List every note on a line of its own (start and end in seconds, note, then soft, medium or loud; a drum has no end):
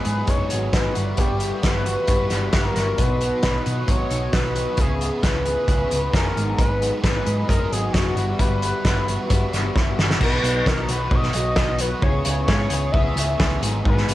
0.00 0.51 G#2 medium
0.00 0.27 F#3 medium
0.00 1.40 B3 medium
0.00 0.26 D#4 medium
0.00 0.31 B4 loud
0.04 0.21 G#2 medium
0.04 0.28 B3 medium
0.04 0.28 D#4 medium
0.04 0.28 G#4 medium
0.04 closed hi-hat medium
0.27 0.44 F#1 medium
0.27 0.72 F#3 medium
0.27 0.73 B3 loud
0.27 0.73 D#4 medium
0.27 0.74 G#4 loud
0.27 0.74 C#5 loud
0.27 kick loud
0.27 closed hi-hat medium
0.49 0.68 G#1 medium
0.49 0.96 F#3 medium
0.49 closed hi-hat medium
0.73 0.89 G#1 medium
0.73 0.96 F#3 medium
0.73 0.95 B3 medium
0.73 0.94 D#4 medium
0.73 0.93 G#4 medium
0.73 1.21 B4 loud
0.73 kick loud
0.73 snare loud
0.73 closed hi-hat medium
0.93 1.12 G1 medium
0.93 1.15 G3 medium
0.93 1.18 B3 medium
0.93 1.17 E4 medium
0.93 1.19 F#4 medium
0.93 closed hi-hat medium
1.16 1.50 G1 medium
1.16 1.61 G3 medium
1.16 1.64 B3 medium
1.16 1.63 E4 medium
1.16 1.65 F#4 medium
1.16 1.64 G4 loud
1.16 kick loud
1.16 closed hi-hat medium
1.40 3.21 B3 medium
1.40 closed hi-hat medium
1.62 1.95 G1 medium
1.62 2.06 G3 medium
1.62 1.87 B3 medium
1.62 1.85 E4 medium
1.62 1.84 F#4 medium
1.62 2.56 B4 loud
1.62 kick loud
1.62 snare loud
1.62 closed hi-hat medium
1.84 2.07 B3 medium
1.84 2.08 E4 medium
1.84 2.09 F#4 medium
1.84 closed hi-hat medium
2.07 2.24 G1 medium
2.07 2.51 G3 medium
2.07 2.54 B3 medium
2.07 2.54 E4 loud
2.07 2.55 F#4 loud
2.07 kick loud
2.07 closed hi-hat medium
2.30 2.46 G1 medium
2.30 2.99 G3 medium
2.30 snare soft
2.30 closed hi-hat medium
2.53 2.69 G1 medium
2.53 2.97 G3 medium
2.53 2.78 B3 medium
2.53 2.76 E4 medium
2.53 2.75 F#4 medium
2.53 3.02 A#4 loud
2.53 kick loud
2.53 snare loud
2.53 closed hi-hat medium
2.76 2.92 G1 medium
2.76 2.98 B3 medium
2.76 2.98 E4 medium
2.76 2.98 F#4 medium
2.76 snare soft
2.76 closed hi-hat medium
2.97 3.30 B1 medium
2.97 4.12 B2 medium
2.97 3.42 F#3 medium
2.97 3.43 B3 medium
2.97 3.44 D#4 loud
2.97 3.45 F#4 medium
2.97 3.44 B4 medium
2.97 kick loud
2.97 closed hi-hat medium
3.21 4.82 B3 medium
3.21 closed hi-hat medium
3.43 3.59 B1 medium
3.43 3.85 F#3 medium
3.43 3.66 B3 medium
3.43 3.64 D#4 medium
3.43 3.62 F#4 medium
3.43 3.92 B4 loud
3.43 kick medium
3.43 snare loud
3.43 closed hi-hat medium
3.64 3.82 B2 medium
3.64 3.87 B3 medium
3.64 3.87 D#4 medium
3.64 3.88 F#4 medium
3.64 closed hi-hat medium
3.86 4.04 G#1 medium
3.86 4.32 F#3 medium
3.86 4.34 B3 medium
3.86 4.34 D#4 loud
3.86 4.35 F#4 loud
3.86 kick loud
3.86 closed hi-hat medium
3.90 4.33 C#5 loud
4.11 4.27 B1 medium
4.11 4.80 F#3 medium
4.11 closed hi-hat medium
4.33 4.65 B1 medium
4.33 4.77 F#3 medium
4.33 4.57 B3 medium
4.33 4.55 D#4 medium
4.33 4.54 F#4 medium
4.33 4.81 B4 loud
4.33 kick loud
4.33 snare loud
4.33 closed hi-hat medium
4.55 4.79 B3 medium
4.55 4.78 D#4 medium
4.55 4.77 F#4 medium
4.55 closed hi-hat medium
4.77 5.09 C#2 medium
4.77 5.91 C#3 medium
4.77 5.23 E3 medium
4.77 5.25 B3 medium
4.77 5.25 E4 medium
4.77 5.22 G#4 medium
4.77 5.26 G#4 loud
4.77 kick loud
4.77 closed hi-hat medium
5.01 6.18 B3 medium
5.01 closed hi-hat medium
5.22 5.55 C#2 medium
5.22 5.66 E3 medium
5.22 5.48 B3 medium
5.22 5.68 C#4 medium
5.22 5.46 E4 medium
5.22 6.16 B4 loud
5.22 kick loud
5.22 snare loud
5.22 closed hi-hat medium
5.27 5.44 G#4 medium
5.45 5.68 B3 medium
5.45 5.68 E4 medium
5.45 5.70 G#4 medium
5.45 closed hi-hat medium
5.67 5.84 C#2 medium
5.67 6.11 E3 medium
5.67 6.13 B3 medium
5.67 6.14 C#4 medium
5.67 6.13 E4 loud
5.67 6.14 G#4 loud
5.67 kick loud
5.67 closed hi-hat medium
5.91 6.08 C#2 medium
5.91 6.37 E3 medium
5.91 closed hi-hat medium
6.12 6.29 F#1 medium
6.12 6.34 E3 medium
6.12 6.38 B3 medium
6.12 6.37 C#4 medium
6.12 6.35 E4 medium
6.12 6.34 G#4 medium
6.12 6.56 A#4 loud
6.12 kick loud
6.12 snare loud
6.12 closed hi-hat medium
6.36 6.53 G#1 medium
6.36 6.58 G#2 medium
6.36 6.58 F#3 medium
6.36 6.59 B3 medium
6.36 6.58 D#4 medium
6.36 6.60 G#4 medium
6.36 closed hi-hat medium
6.56 6.90 G#1 medium
6.56 7.72 G#2 medium
6.56 7.02 F#3 medium
6.56 7.04 B3 loud
6.56 7.04 D#4 loud
6.56 7.00 B4 loud
6.56 kick loud
6.56 closed hi-hat medium
6.61 7.04 G#4 medium
6.81 8.62 B3 medium
6.81 closed hi-hat medium
7.03 7.20 G#1 medium
7.03 7.47 F#3 medium
7.03 7.27 B3 medium
7.03 7.25 D#4 medium
7.03 7.23 G#4 medium
7.03 7.46 B4 medium
7.03 kick loud
7.03 snare loud
7.03 closed hi-hat medium
7.24 7.43 G#2 medium
7.24 7.48 B3 medium
7.24 7.49 D#4 medium
7.24 7.50 G#4 medium
7.24 closed hi-hat medium
7.48 7.65 F#1 medium
7.48 7.92 F#3 medium
7.48 7.94 B3 loud
7.48 7.93 D#4 medium
7.48 7.95 G#4 loud
7.48 7.73 A#4 loud
7.48 kick loud
7.48 closed hi-hat medium
7.71 7.88 G#1 medium
7.71 8.15 F#3 medium
7.71 7.92 G#4 medium
7.71 closed hi-hat medium
7.92 8.10 F#1 medium
7.92 8.18 F#3 medium
7.92 8.17 B3 medium
7.92 8.16 D#4 medium
7.92 8.36 F#4 medium
7.92 8.15 G#4 medium
7.92 kick loud
7.92 snare loud
7.92 closed hi-hat medium
8.15 8.32 G1 medium
8.15 8.38 G3 medium
8.15 8.39 B3 medium
8.15 8.40 E4 medium
8.15 8.41 F#4 medium
8.15 closed hi-hat medium
8.39 8.71 G1 medium
8.39 8.84 G3 medium
8.39 8.85 B3 loud
8.39 8.86 E4 medium
8.39 8.86 F#4 medium
8.39 9.72 B4 loud
8.39 kick loud
8.39 closed hi-hat medium
8.62 9.76 B3 medium
8.62 closed hi-hat medium
8.85 9.16 G1 medium
8.85 9.28 G3 medium
8.85 9.08 B3 medium
8.85 9.07 E4 medium
8.85 9.05 F#4 medium
8.85 kick loud
8.85 snare loud
8.85 closed hi-hat medium
9.06 9.29 B3 medium
9.06 9.30 E4 medium
9.06 9.31 F#4 medium
9.06 closed hi-hat medium
9.29 9.46 G1 medium
9.29 9.73 G3 medium
9.29 9.74 B3 medium
9.29 9.75 E4 medium
9.29 9.76 F#4 medium
9.29 kick loud
9.29 closed hi-hat medium
9.53 9.69 G1 medium
9.53 10.22 G3 medium
9.53 snare soft
9.53 closed hi-hat medium
9.74 9.91 G1 medium
9.74 10.19 G3 medium
9.74 9.98 B3 medium
9.74 9.97 E4 medium
9.74 9.95 F#4 medium
9.74 kick loud
9.74 snare medium
9.96 10.14 G1 medium
9.96 10.20 B3 medium
9.96 10.20 E4 medium
9.96 10.19 F#4 medium
9.96 snare medium
10.10 snare medium
10.20 10.38 B1 medium
10.20 11.35 B2 medium
10.20 11.08 F#3 medium
10.20 10.90 B3 medium
10.20 10.88 D#4 loud
10.20 10.87 F#4 medium
10.20 10.65 B4 medium
10.20 kick loud
10.20 crash loud
10.44 10.61 B1 medium
10.44 closed hi-hat medium
10.66 10.84 B1 medium
10.66 11.09 D#4 medium
10.66 10.89 A#4 medium
10.66 kick loud
10.66 snare loud
10.88 11.07 B1 medium
10.88 11.11 B3 medium
10.88 11.10 D#4 medium
10.88 11.11 F#4 medium
10.88 11.17 B4 medium
10.88 closed hi-hat medium
11.09 11.29 B1 medium
11.09 11.55 F#3 medium
11.09 11.36 B3 loud
11.09 11.34 D#4 loud
11.09 11.32 F#4 loud
11.09 kick loud
11.15 11.57 D#5 loud
11.23 snare soft
11.33 11.53 B1 medium
11.33 12.03 F#3 medium
11.33 11.57 B3 medium
11.33 11.57 D#4 medium
11.33 11.58 F#4 medium
11.33 closed hi-hat medium
11.56 11.92 B1 medium
11.56 12.01 F#3 medium
11.56 11.81 B3 medium
11.56 11.79 D#4 medium
11.56 11.78 F#4 medium
11.56 11.82 D#5 loud
11.56 kick loud
11.56 snare loud
11.79 12.02 B3 medium
11.79 12.02 D#4 medium
11.79 12.01 F#4 medium
11.79 12.03 B4 medium
11.79 closed hi-hat medium
12.01 12.20 C#2 medium
12.01 13.16 C#3 medium
12.01 12.91 E3 medium
12.01 12.72 B3 medium
12.01 12.70 E4 loud
12.01 12.68 G#4 loud
12.01 12.46 C#5 loud
12.01 kick loud
12.25 12.44 C#2 medium
12.25 closed hi-hat medium
12.47 12.66 G#2 medium
12.47 12.92 C#4 medium
12.47 12.93 C#5 loud
12.47 kick loud
12.47 snare loud
12.69 12.89 C#2 medium
12.69 12.93 B3 medium
12.69 12.93 E4 medium
12.69 12.94 G#4 medium
12.69 closed hi-hat loud
12.91 13.12 C#2 medium
12.91 13.37 E3 medium
12.91 13.18 B3 loud
12.91 13.38 C#4 medium
12.91 13.16 E4 loud
12.91 13.14 G#4 loud
12.91 13.62 E5 loud
12.91 kick loud
13.16 13.34 C#2 medium
13.16 13.62 E3 medium
13.16 13.39 B3 medium
13.16 13.39 E4 medium
13.16 13.40 G#4 medium
13.16 closed hi-hat medium
13.38 13.57 C#2 medium
13.38 13.61 E3 medium
13.38 13.63 B3 medium
13.38 13.63 C#4 medium
13.38 13.62 E4 medium
13.38 13.61 G#4 medium
13.38 kick loud
13.38 snare loud
13.62 13.80 G#1 medium
13.62 13.83 G#2 medium
13.62 13.85 F#3 medium
13.62 13.86 B3 medium
13.62 13.86 D#4 medium
13.62 13.87 G#4 medium
13.62 closed hi-hat medium
13.84 14.03 G#1 medium
13.84 14.14 G#2 medium
13.84 14.14 F#3 medium
13.84 14.14 B3 loud
13.84 14.14 D#4 medium
13.84 14.14 G#4 medium
13.84 kick loud
13.89 14.14 B4 medium
13.97 snare soft
14.08 14.14 G#1 medium
14.08 closed hi-hat medium